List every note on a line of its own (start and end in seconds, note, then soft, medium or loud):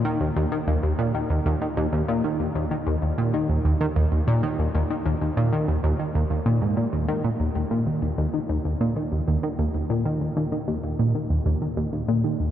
0.05 0.19 D#3 medium
0.21 0.30 D#2 medium
0.36 0.46 D#2 loud
0.52 0.58 D#3 medium
0.68 0.77 D#2 loud
0.83 0.93 D#2 medium
0.99 1.13 A#2 medium
1.15 1.29 D#3 medium
1.30 1.40 D#2 medium
1.46 1.55 D#2 loud
1.62 1.67 D#3 medium
1.77 1.87 D#2 loud
1.93 2.02 D#2 medium
2.08 2.22 A#2 medium
2.24 2.38 D#3 medium
2.40 2.49 D#2 medium
2.55 2.65 D#2 loud
2.71 2.77 D#3 medium
2.87 2.96 D#2 loud
3.02 3.12 D#2 medium
3.18 3.32 A#2 loud
3.34 3.48 D#3 medium
3.49 3.59 D#2 medium
3.65 3.74 D#2 loud
3.81 3.86 D#3 medium
3.96 4.05 D#2 loud
4.12 4.21 D#2 medium
4.28 4.41 A#2 loud
4.43 4.57 D#3 medium
4.59 4.68 D#2 medium
4.75 4.84 D#2 medium
4.90 4.96 D#3 medium
5.06 5.15 D#2 loud
5.21 5.31 D#2 medium
5.37 5.51 A#2 medium
5.53 5.66 D#3 medium
5.68 5.77 D#2 medium
5.84 5.93 D#2 medium
5.99 6.05 D#3 medium
6.15 6.24 D#2 loud
6.30 6.40 D#2 medium
6.46 6.60 A#2 loud
6.62 6.76 G#2 medium
6.77 6.86 A#2 medium
6.93 7.07 D#2 medium
7.08 7.23 D#3 loud
7.24 7.30 A#2 medium
7.40 7.49 D#2 medium
7.55 7.65 D#2 medium
7.71 7.85 A#2 loud
7.87 8.01 D#3 medium
8.02 8.12 D#2 medium
8.18 8.27 D#2 loud
8.34 8.39 D#3 medium
8.49 8.59 D#2 medium
8.65 8.74 D#2 medium
8.81 8.95 A#2 medium
8.96 9.10 D#3 medium
9.12 9.21 D#2 medium
9.28 9.37 D#2 loud
9.43 9.49 D#3 medium
9.59 9.68 D#2 medium
9.74 9.84 D#2 medium
9.90 10.04 A#2 loud
10.05 10.19 D#3 medium
10.21 10.30 D#2 medium
10.37 10.46 D#2 loud
10.52 10.58 D#3 medium
10.68 10.77 D#2 loud
10.84 10.93 D#2 medium
10.99 11.13 A#2 medium
11.15 11.29 D#3 medium
11.30 11.40 D#2 medium
11.46 11.55 D#2 loud
11.62 11.67 D#3 medium
11.77 11.87 D#2 loud
11.93 12.02 D#2 medium
12.08 12.22 A#2 loud
12.24 12.38 D#3 medium
12.40 12.49 D#2 medium